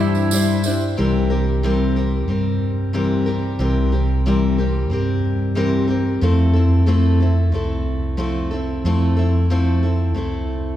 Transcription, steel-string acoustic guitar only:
0.00 0.32 C3 medium
0.00 0.32 E3 medium
0.00 0.31 G3 medium
0.00 0.32 D4 medium
0.00 0.33 E4 medium
0.00 0.33 C5 medium
0.32 0.65 G3 medium
0.32 0.66 D4 medium
0.32 0.66 E4 medium
0.32 0.65 C5 medium
0.66 0.96 G3 soft
0.66 0.97 D4 soft
0.66 0.98 E4 medium
0.66 0.98 C5 medium
0.97 1.30 C3 medium
0.97 1.30 E3 medium
0.97 1.31 G3 medium
0.97 1.31 C4 medium
0.97 1.30 G4 medium
0.97 1.29 A#4 medium
1.30 1.63 G3 soft
1.30 1.63 C4 soft
1.30 1.64 G4 soft
1.30 1.63 A#4 soft
1.63 1.96 C3 medium
1.63 1.97 E3 medium
1.63 1.97 G3 medium
1.63 1.97 C4 medium
1.63 1.96 G4 medium
1.63 1.95 A#4 medium
1.96 2.27 G3 soft
1.96 2.27 C4 soft
1.96 2.28 G4 soft
1.96 2.29 A#4 soft
2.28 2.93 G3 soft
2.28 2.94 C4 soft
2.28 2.94 G4 soft
2.28 2.94 A#4 medium
2.93 3.27 C3 medium
2.93 3.27 E3 medium
2.93 3.27 G3 medium
2.93 3.27 C4 medium
2.93 3.26 G4 medium
2.93 3.25 A#4 medium
3.26 3.59 G3 soft
3.26 3.59 C4 soft
3.26 3.59 G4 soft
3.26 3.59 A#4 soft
3.59 3.92 C3 medium
3.59 3.92 E3 medium
3.59 3.93 G3 medium
3.59 3.93 C4 medium
3.59 3.91 G4 medium
3.59 3.91 A#4 medium
3.92 4.26 G3 soft
3.92 4.26 C4 soft
3.92 4.26 G4 soft
3.92 4.25 A#4 soft
4.26 4.59 C3 medium
4.26 4.59 E3 medium
4.26 4.59 G3 medium
4.26 4.59 C4 medium
4.26 4.58 G4 medium
4.26 4.57 A#4 medium
4.58 4.88 G3 soft
4.58 4.90 C4 soft
4.58 4.91 G4 soft
4.58 4.91 A#4 soft
4.90 5.55 G3 soft
4.90 5.56 C4 soft
4.90 5.56 G4 soft
4.90 5.56 A#4 medium
5.55 5.89 C3 medium
5.55 5.89 E3 medium
5.55 5.89 G3 medium
5.55 5.89 C4 medium
5.55 5.88 G4 medium
5.55 5.86 A#4 medium
5.88 6.22 G3 soft
5.88 6.22 C4 soft
5.88 6.22 G4 soft
5.88 6.21 A#4 soft
6.21 6.55 F3 medium
6.21 6.55 A3 medium
6.21 6.55 C4 medium
6.21 6.54 E4 medium
6.21 6.52 A4 medium
6.53 6.87 C4 soft
6.53 6.87 E4 soft
6.53 6.87 A4 soft
6.86 7.20 F3 medium
6.86 7.20 A3 medium
6.86 7.21 C4 medium
6.86 7.21 E4 medium
6.86 7.19 A4 medium
7.20 7.52 C4 soft
7.20 7.53 E4 soft
7.20 7.53 A4 medium
7.52 8.17 A3 soft
7.52 8.18 C4 soft
7.52 8.19 E4 medium
7.52 8.18 A4 medium
8.17 8.51 F3 medium
8.17 8.51 A3 medium
8.17 8.52 C4 medium
8.17 8.52 E4 medium
8.17 8.50 A4 medium
8.51 8.85 C4 soft
8.51 8.85 E4 soft
8.51 8.84 A4 medium
8.85 9.18 F3 medium
8.85 9.18 A3 medium
8.85 9.18 C4 medium
8.85 9.17 E4 medium
8.85 9.15 A4 medium
9.16 9.50 C4 soft
9.16 9.50 E4 soft
9.16 9.50 A4 soft
9.50 9.83 F3 medium
9.50 9.83 A3 medium
9.50 9.84 C4 medium
9.50 9.83 E4 medium
9.50 9.82 A4 medium
9.83 10.14 C4 soft
9.83 10.16 E4 soft
9.83 10.16 A4 soft
10.14 10.77 A3 soft
10.14 10.77 C4 soft
10.14 10.77 E4 medium
10.14 10.77 A4 medium

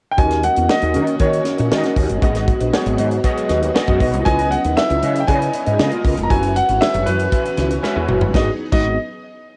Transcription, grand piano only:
0.11 0.18 G5 medium
0.18 0.42 G#5 medium
0.44 0.70 F#5 medium
0.69 1.17 D#5 medium
1.20 1.93 C#5 medium
4.25 4.52 G#5 loud
4.51 4.78 F#5 medium
4.77 5.22 E5 medium
5.20 5.28 G5 medium
5.28 6.00 G#5 medium
6.23 6.30 A#5 medium
6.30 6.54 G#5 medium
6.56 6.82 F#5 medium
6.81 7.07 E5 loud
7.06 8.04 B4 medium
8.35 8.49 D#5 medium
8.72 8.96 D#5 medium

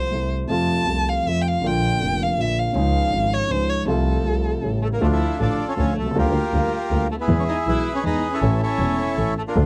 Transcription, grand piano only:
0.00 0.10 C2 soft
0.00 0.11 A3 soft
0.00 0.11 F4 soft
0.11 0.48 C2 soft
0.11 0.46 C3 soft
0.11 0.48 G3 soft
0.11 0.49 A3 soft
0.11 0.49 E4 soft
0.48 0.86 F2 medium
0.48 0.83 C3 medium
0.48 0.85 F3 medium
0.48 0.87 A3 medium
0.52 0.87 F4 medium
0.85 1.24 C2 soft
0.85 0.86 C3 soft
0.85 1.23 C3 soft
0.85 1.23 F3 soft
0.85 1.24 A3 soft
0.89 1.25 F4 soft
1.24 1.62 F2 soft
1.24 1.61 C3 soft
1.24 1.62 F3 soft
1.24 1.63 A3 soft
1.28 1.63 F4 soft
1.62 2.00 A#1 medium
1.62 2.00 A#2 medium
1.62 1.98 D3 medium
1.62 1.99 F3 medium
1.62 2.00 A#3 soft
1.66 2.01 F4 medium
1.99 2.37 F1 soft
1.99 2.37 F2 soft
1.99 2.35 D3 soft
1.99 2.37 F3 soft
1.99 2.37 A#3 soft
2.04 2.38 F4 soft
2.37 2.74 A#1 soft
2.37 2.74 A#2 soft
2.37 2.73 D3 soft
2.37 2.73 F3 soft
2.37 2.74 A#3 soft
2.37 2.75 F4 soft
2.73 3.11 C#2 medium
2.73 2.75 C#3 medium
2.73 3.09 C#3 medium
2.73 3.11 F3 medium
2.73 3.11 G#3 medium
2.77 3.12 D#4 medium
3.11 3.48 G#1 soft
3.11 3.48 G#2 soft
3.11 3.47 C#3 soft
3.11 3.48 F3 soft
3.11 3.49 G#3 soft
3.11 3.49 D#4 soft
3.48 3.86 C#2 medium
3.48 3.50 C#3 soft
3.48 3.86 C#3 medium
3.48 3.85 F3 soft
3.48 3.86 G#3 soft
3.53 3.87 D#4 soft
3.85 4.23 C2 medium
3.85 3.86 C3 medium
3.85 4.21 C3 medium
3.85 4.23 F3 medium
3.85 4.23 A3 medium
3.89 4.24 F4 medium
4.25 4.61 C2 soft
4.25 4.61 C3 soft
4.25 4.61 F3 soft
4.25 4.62 A3 soft
4.25 4.62 F4 soft
4.62 5.00 A1 soft
4.62 5.00 A2 soft
4.62 4.99 C#3 soft
4.62 5.00 G3 soft
4.62 5.00 A3 soft
4.66 5.01 E4 soft
5.01 5.18 D2 medium
5.01 5.18 D3 medium
5.01 5.18 F3 medium
5.01 5.18 A3 medium
5.01 5.18 F4 medium
5.39 5.56 A1 soft
5.39 5.56 A2 soft
5.39 5.56 D3 soft
5.39 5.56 F3 soft
5.39 5.56 A3 soft
5.39 5.56 F4 soft
5.77 5.94 D2 medium
5.77 5.94 D3 medium
5.77 5.94 F3 soft
5.77 5.94 A3 soft
5.77 5.94 F4 soft
6.01 6.06 B1 medium
6.01 6.11 C2 medium
6.11 6.16 C#2 medium
6.15 6.32 D2 medium
6.15 6.32 D3 medium
6.15 6.32 G3 medium
6.15 6.32 A#3 medium
6.15 6.32 F4 medium
6.53 6.69 D2 soft
6.53 6.69 D3 medium
6.53 6.69 G3 soft
6.53 6.69 A#3 soft
6.53 6.70 F4 soft
6.91 7.07 D2 medium
6.91 7.07 D3 medium
6.91 7.07 G3 soft
6.91 7.07 A#3 soft
6.91 7.07 F4 medium
7.29 7.45 E2 medium
7.29 7.45 E3 medium
7.29 7.45 G#3 medium
7.29 7.45 B3 medium
7.29 7.45 G#4 medium
7.67 7.83 B1 soft
7.67 7.83 B2 soft
7.67 7.82 E3 soft
7.67 7.82 G#3 soft
7.67 7.83 B3 soft
7.67 7.83 G#4 soft
8.04 8.20 E2 medium
8.04 8.20 E3 medium
8.04 8.20 G#3 soft
8.04 8.20 B3 soft
8.04 8.20 G#4 medium
8.42 8.58 A1 medium
8.42 8.58 A2 medium
8.42 8.57 E3 medium
8.42 8.58 A3 medium
8.42 8.58 C#4 medium
8.42 8.58 A4 medium
8.79 8.95 E1 soft
8.79 8.95 E2 medium
8.79 8.95 E3 soft
8.79 8.95 A3 soft
8.79 8.95 C#4 soft
8.79 8.96 A4 soft
9.17 9.34 A1 medium
9.17 9.34 A2 soft
9.17 9.34 E3 soft
9.17 9.34 A3 soft
9.17 9.34 C#4 soft
9.17 9.34 A4 medium
9.56 9.66 D2 medium
9.56 9.66 D3 medium
9.56 9.66 F3 medium
9.56 9.66 A3 medium
9.56 9.66 D4 medium
9.56 9.66 A4 medium

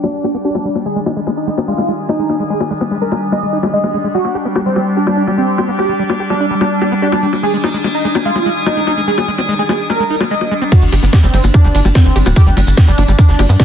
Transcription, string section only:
0.00 0.86 D4 medium
0.00 0.86 G4 medium
0.00 0.86 G5 medium
0.00 0.86 D6 medium
0.86 4.14 D#3 medium
0.97 4.14 G#5 medium
1.44 4.14 D#6 medium
4.14 7.43 D4 medium
4.23 7.43 G5 medium
4.39 7.43 G4 medium
4.82 7.43 D6 medium
7.43 10.72 D#3 medium
7.72 10.72 D#6 medium
7.82 10.72 G#5 medium

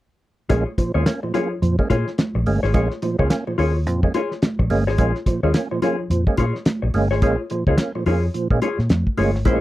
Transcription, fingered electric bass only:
0.50 0.63 A#1 medium
0.95 1.04 D#2 medium
1.62 1.75 F2 loud
1.90 2.03 A#2 loud
2.35 2.44 A#1 medium
2.46 2.59 G1 medium
2.63 2.72 G#1 loud
2.74 2.87 A#1 loud
3.19 3.28 C#2 medium
3.58 3.86 D#2 medium
3.86 4.08 F2 medium
4.59 4.68 A#1 loud
4.70 4.87 G1 medium
4.87 4.96 G#1 medium
4.99 5.12 A#1 medium
5.43 5.52 D#2 medium
6.10 6.23 F2 medium
6.38 6.51 A#2 medium
6.83 6.92 A#1 medium
6.94 7.11 G1 medium
7.11 7.22 G#1 loud
7.22 7.35 A#1 loud
7.67 7.75 C#2 medium
8.06 8.28 F2 medium
8.51 8.59 A#2 medium
8.79 8.87 A#2 medium
8.90 9.03 F2 loud
9.18 9.35 G1 medium
9.35 9.46 G#1 medium
9.46 9.59 A#1 medium

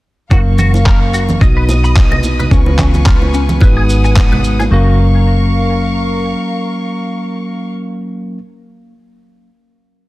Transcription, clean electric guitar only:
0.31 0.39 F#4 medium
0.59 0.70 F#4 medium
0.86 0.98 A#4 medium
1.14 1.22 F#4 medium
1.41 1.46 D#5 medium
1.57 1.63 B4 medium
1.84 1.90 B5 medium
2.12 2.18 D#5 medium
2.39 2.43 B4 medium
2.52 2.59 C#4 medium
2.79 2.91 C#4 medium
3.07 3.18 F4 medium
3.34 3.42 C#4 medium
3.62 3.66 B4 medium
3.77 3.83 G#4 medium
4.04 4.11 G#5 medium
4.32 4.38 B4 medium
4.59 4.63 G#4 medium
4.72 4.97 F#4 medium

